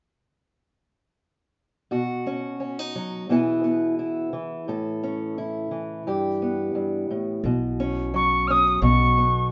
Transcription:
1.91 B2 F#4
2.27 C#4
2.60 C#4
2.79 D#4
2.96 F#3
3.29 B2 E3 B3 E4 G#4
3.64 B3
3.99 E4
4.33 E3
4.68 A2 A4
5.03 C#4
5.38 E4
5.71 E3
6.07 G2 G4
6.42 B3
6.75 G2
7.11 A2
7.44 B1 B2
7.80 C#4
8.14 F#3 C#6
8.48 C#4 D#6 F6
8.82 B1 B2 C#6
9.18 B3

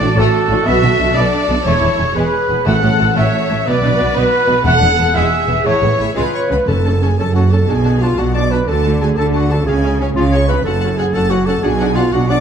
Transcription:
Already playing: A2 F#4 A4 D5
0.00 A1 A2 D4
0.16 A1 A2 A3 F#4 A4
0.49 A1 A2 D4
0.66 B1 B2 B3 A4 E5
0.83 B1 B2 F#4
0.99 B1 B2 D4
1.14 B1 B2 B3 D4 D5
1.48 B1 B2 D4
1.65 E1 E2 A3 E4 C#5
1.81 E1 E2 E4
1.98 E1 E2 C#4
2.15 E1 E2 G#3 G#4 B4
2.49 E1 E2 B3
2.65 A1 A2 A3 A4 F#5
2.82 A1 A2 C#4
2.98 A1 A2 A3
3.15 A1 A2 A3 C#5 E5
3.51 A1 A2 A3
3.66 B1 B2 B3 F#4 B4 D5
3.83 B1 B2 D4
3.98 B1 B2 B3
4.15 B1 B2 B3 B4
4.48 B1 B2 B3
4.64 E1 E2 A3 A4 F#5
4.80 E1 E2 D4
4.98 E1 E2 B3
5.15 E1 E2 G#3 G#4 E5
5.48 E1 E2 B3
5.65 A1 A2 A3 E4 C#5
5.81 A1 A2 B3
5.97 A1 A2 A3 E4 E5
6.15 C#2 C#3 G#3 F4 G#4 B4 F5
6.33 C#5 C#6
6.50 C#2 C#3 B3 B4 B5
6.68 F#1 F#2 C#4 A4 A5
6.86 C#4 A4 A5
7.02 C#4 G#4 A4 G#5 A5
7.18 F#1 F#2 C#4 A4 A5
7.34 C#4 F#4 A4 F#5 A5
7.51 C#4 A4 A5
7.68 B1 B2 D4 F#4 G#4 G#5 A5
7.85 D4 F#4 A5
8.01 D4 F4 F#4 F5 A5
8.18 B1 B2 D4 F#4 F#5 A5
8.35 D4 F#4 D5 A5 D6
8.51 D4 F#4 B4 A5 B5
8.68 D2 D3 A3 F#4 A4 A5
8.83 A3 F#4 A5
9.01 A3 F#4 G#4 G#5 A5
9.17 D2 D3 A3 F#4 A4 A5
9.34 A3 F#4 F#5 A5
9.51 A3 F#4 A4 A5
9.66 C#2 C#3 C#4 G#4 F5 G#5
9.84 C#4 G#4 F5
10.00 C#4 G#4 C#5 F5
10.16 C#2 C#3 C#4 F4 G#4 F5
10.20 F5
10.31 C#4 G#4 C#5 F5 C#6
10.48 G#4 B4 F5 B5
10.52 C#4
10.64 F#1 F#2 C#4 F#4 A4 F#5 A5
10.81 C#4 F#4 F#5
10.97 C#4 F#4 G#4 F#5 G#5
11.13 F#1 F#2 C#4 F#4 A4 F#5 A5
11.30 C#4 F#4 F#5
11.46 C#4 F#4 A4 F#5 A5
11.63 B1 B2 D4 F#4 G#4 F#5 G#5
11.80 D4 F#4 F#5
11.95 D4 F4 F#4 F5 F#5
12.12 B1 B2 D4 F#4 F#5
12.29 D4 F#4 D5 F#5 D6

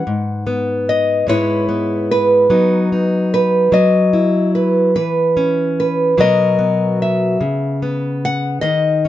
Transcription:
Already playing: B4 F#5
0.07 G#2
0.47 B3
0.89 D#5
1.27 G#2 G#3 B3 E4 B4 C#5
1.69 B3
2.11 B4
2.50 F#3 B3 D#4
2.92 D#4
3.34 B4
3.72 F#3 D#5
4.13 E4
4.55 B4
4.95 E3 B4
5.37 C#4
5.80 B4
6.17 B2 F#3 B3 F#4 A#4 D#5
6.59 B3
7.02 E5
7.41 C#3
7.82 B3
8.25 F#5
8.61 D#3 D#5
9.05 C#4

